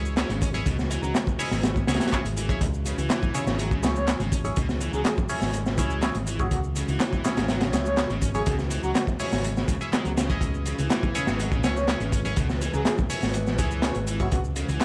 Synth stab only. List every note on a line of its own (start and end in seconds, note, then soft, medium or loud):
0.00 0.14 C#4 medium
0.00 0.14 E4 medium
0.00 0.14 G#4 medium
0.00 0.14 C#5 medium
0.17 0.32 C#4 medium
0.17 0.32 E4 medium
0.17 0.32 G#4 medium
0.17 0.32 C#5 medium
0.54 0.69 C#4 medium
0.54 0.69 E4 medium
0.54 0.69 G#4 medium
0.54 0.69 C#5 medium
1.39 1.85 C#4 loud
1.39 1.85 E4 medium
1.39 1.85 G#4 medium
1.39 1.85 C#5 loud
1.88 2.10 C#4 medium
1.88 2.10 E4 medium
1.88 2.10 G#4 medium
1.88 2.10 C#5 medium
2.12 2.27 C#4 medium
2.12 2.27 E4 medium
2.12 2.27 G#4 medium
2.12 2.27 C#5 medium
2.49 2.64 C#4 medium
2.49 2.64 E4 medium
2.49 2.64 G#4 medium
2.49 2.64 C#5 medium
3.34 3.80 C#4 loud
3.34 3.80 E4 medium
3.34 3.80 G#4 medium
3.34 3.80 C#5 loud
3.83 4.05 C#4 medium
3.83 4.05 E4 medium
3.83 4.05 G#4 medium
3.83 4.05 C#5 medium
4.07 4.22 C#4 medium
4.07 4.22 E4 medium
4.07 4.22 G#4 medium
4.07 4.22 C#5 medium
4.45 4.59 C#4 medium
4.45 4.59 E4 medium
4.45 4.59 G#4 medium
4.45 4.59 C#5 medium
5.29 5.75 C#4 loud
5.29 5.75 E4 medium
5.29 5.75 G#4 medium
5.29 5.75 C#5 loud
5.78 6.00 C#4 medium
5.78 6.00 E4 medium
5.78 6.00 G#4 medium
5.78 6.00 C#5 medium
6.03 6.18 C#4 medium
6.03 6.18 E4 medium
6.03 6.18 G#4 medium
6.03 6.18 C#5 medium
6.40 6.54 C#4 medium
6.40 6.54 E4 medium
6.40 6.54 G#4 medium
6.40 6.54 C#5 medium
7.25 7.71 C#4 loud
7.25 7.71 E4 medium
7.25 7.71 G#4 medium
7.25 7.71 C#5 loud
7.73 7.95 C#4 medium
7.73 7.95 E4 medium
7.73 7.95 G#4 medium
7.73 7.95 C#5 medium
7.98 8.13 C#4 medium
7.98 8.13 E4 medium
7.98 8.13 G#4 medium
7.98 8.13 C#5 medium
8.35 8.49 C#4 medium
8.35 8.49 E4 medium
8.35 8.49 G#4 medium
8.35 8.49 C#5 medium
9.20 9.66 C#4 loud
9.20 9.66 E4 medium
9.20 9.66 G#4 medium
9.20 9.66 C#5 loud
9.81 10.04 C#4 medium
9.81 10.04 E4 medium
9.81 10.04 G#4 medium
9.81 10.04 E5 medium
10.30 11.12 C#4 medium
10.30 11.12 E4 medium
10.30 11.12 G#4 medium
10.30 11.12 D#5 loud
11.15 11.61 C#4 loud
11.15 11.61 E4 medium
11.15 11.61 G#4 medium
11.15 11.61 C#5 loud
11.64 11.85 C#4 medium
11.64 11.85 E4 medium
11.64 11.85 G#4 medium
11.64 11.85 C#5 medium
11.88 12.03 C#4 medium
11.88 12.03 E4 medium
11.88 12.03 G#4 medium
11.88 12.03 C#5 medium
12.25 12.39 C#4 medium
12.25 12.39 E4 medium
12.25 12.39 G#4 medium
12.25 12.39 C#5 medium
13.10 13.56 C#4 loud
13.10 13.56 E4 medium
13.10 13.56 G#4 medium
13.10 13.56 C#5 loud
13.59 13.80 C#4 medium
13.59 13.80 E4 medium
13.59 13.80 G#4 medium
13.59 13.80 C#5 medium
13.83 13.98 C#4 medium
13.83 13.98 E4 medium
13.83 13.98 G#4 medium
13.83 13.98 C#5 medium
14.20 14.35 C#4 medium
14.20 14.35 E4 medium
14.20 14.34 G#4 medium
14.20 14.34 C#5 loud